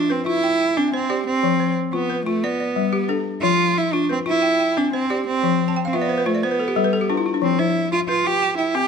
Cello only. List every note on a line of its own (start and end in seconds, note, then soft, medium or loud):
0.00 0.13 D4 medium
0.12 0.26 C4 medium
0.27 0.79 E4 loud
0.77 0.93 D4 medium
0.94 1.25 C4 medium
1.26 1.73 C4 loud
1.93 2.24 B3 medium
2.26 2.45 A3 medium
2.43 3.10 B3 medium
3.42 3.79 F4 loud
3.77 3.94 E4 medium
3.92 4.09 D4 medium
4.11 4.18 C4 medium
4.28 4.79 E4 loud
4.77 4.93 D4 medium
4.93 5.24 C4 medium
5.27 5.73 C4 medium
5.87 5.96 C4 medium
5.95 6.29 B3 medium
6.27 6.45 A3 medium
6.44 7.09 B3 medium
7.43 7.60 C4 medium
7.59 7.91 E4 medium
7.92 7.99 F4 medium
8.09 8.28 F4 medium
8.26 8.57 G4 loud
8.57 8.76 E4 medium
8.75 8.88 G4 loud